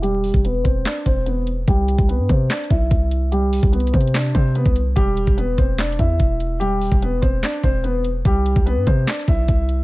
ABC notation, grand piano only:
X:1
M:4/4
L:1/8
Q:1/4=146
K:Em
V:1 name="Grand piano"
[G,G]2 [B,B] [Cc] [Dd] [Cc] [B,B] z | [G,G]2 [B,B] [Cc] [Dd] [Ee]3 | [G,G]2 [B,B] [Cc] [Dd] [Cc] [B,B] z | [G,G]2 [B,B] [Cc] [Dd] [Ee]3 |
[G,G]2 [B,B] [Cc] [Dd] [Cc] [B,B] z | [G,G]2 [B,B] [Cc] [Dd] [Ee]3 |]